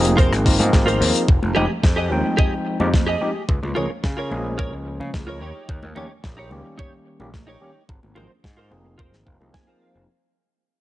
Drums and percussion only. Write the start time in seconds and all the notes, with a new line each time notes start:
0.05 closed hi-hat
0.18 kick, closed hi-hat
0.33 cross-stick, closed hi-hat
0.46 kick, open hi-hat
0.60 closed hi-hat, high conga
0.73 kick, snare, closed hi-hat
0.88 closed hi-hat
1.02 open hi-hat
1.15 closed hi-hat
1.28 kick
1.43 high conga
1.56 low conga
1.83 kick, snare
2.12 high conga
2.39 kick
2.80 high conga
2.94 kick, snare
3.49 kick
3.63 high conga
3.76 low conga
4.04 kick, snare
4.32 high conga
4.59 kick
5.01 high conga
5.14 kick, snare
5.69 kick
5.83 high conga
5.96 low conga
6.24 kick, snare
6.51 high conga
6.79 kick
7.20 high conga
7.34 kick, snare
7.89 kick
8.03 high conga
8.16 low conga
8.44 kick, snare
8.72 high conga
8.99 kick
9.13 snare
9.27 kick
9.41 high conga
9.54 kick, snare